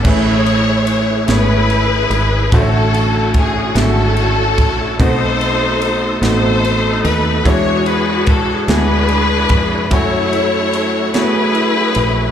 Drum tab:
CC |x-----|------|------|------|
RD |-xxxxx|xxxxxx|xxxxxx|xxxxxx|
SD |---o--|---o--|---o--|---o--|
BD |o-----|o-o--o|o-----|o-o--o|

CC |------|
RD |xxxxxx|
SD |---o--|
BD |o-----|